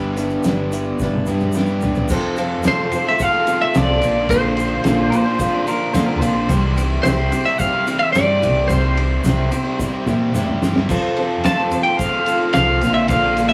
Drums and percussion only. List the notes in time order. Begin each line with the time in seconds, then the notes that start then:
0.17 closed hi-hat, shaker
0.30 shaker
0.44 snare, closed hi-hat, shaker
0.72 closed hi-hat, shaker
0.99 kick, snare, shaker
1.15 high tom
1.26 shaker
1.40 mid tom, shaker
1.53 shaker
1.57 snare
1.66 shaker
1.81 floor tom, shaker
1.95 floor tom, shaker
2.09 kick, crash, shaker
2.37 ride, shaker
2.63 snare, ride, shaker
2.92 ride, shaker
3.19 kick, ride, shaker
3.47 ride, shaker
3.75 snare, ride, shaker
4.02 ride, shaker
4.29 kick, ride, shaker
4.57 ride, shaker
4.84 snare, ride, shaker
5.12 ride, shaker
5.39 kick, ride, shaker
5.67 ride, shaker
5.94 snare, ride, shaker
6.22 ride, shaker
6.49 kick, ride, shaker
6.78 ride, shaker
7.05 snare, ride, shaker
7.32 ride, shaker
7.59 kick, ride, shaker
7.87 ride, shaker
8.15 snare, ride, shaker
8.43 ride, shaker
8.70 kick, ride, shaker
8.97 ride
9.24 kick, snare, ride, shaker
9.52 ride, shaker
9.79 kick, high tom, shaker
10.07 mid tom, shaker
10.35 mid tom, shaker
10.49 mid tom
10.63 snare, shaker
10.76 snare
10.89 kick, crash, shaker
11.17 ride
11.44 snare, ride, shaker
11.72 ride, shaker
11.99 kick, ride, shaker
12.26 ride, shaker
12.53 snare, ride, shaker
12.81 ride, shaker
13.08 kick, ride, shaker
13.37 ride, shaker